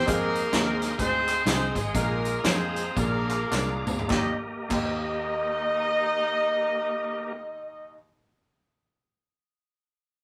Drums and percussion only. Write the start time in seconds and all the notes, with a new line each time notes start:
0.07 kick, closed hi-hat, tambourine
0.35 closed hi-hat, tambourine
0.53 snare, clap, closed hi-hat, tambourine
0.82 snare, closed hi-hat, tambourine
0.99 kick, closed hi-hat, tambourine
1.27 clap, closed hi-hat, tambourine
1.46 snare, clap, closed hi-hat, tambourine
1.75 kick, closed hi-hat, tambourine
1.95 kick, closed hi-hat, tambourine
2.25 closed hi-hat, tambourine
2.44 snare, clap, closed hi-hat, tambourine
2.76 closed hi-hat, tambourine
2.97 kick, closed hi-hat, tambourine
3.30 clap, closed hi-hat, tambourine
3.52 snare, clap, tambourine
3.87 mid tom, tambourine
3.99 floor tom
4.10 kick, snare, clap
4.71 kick, clap, crash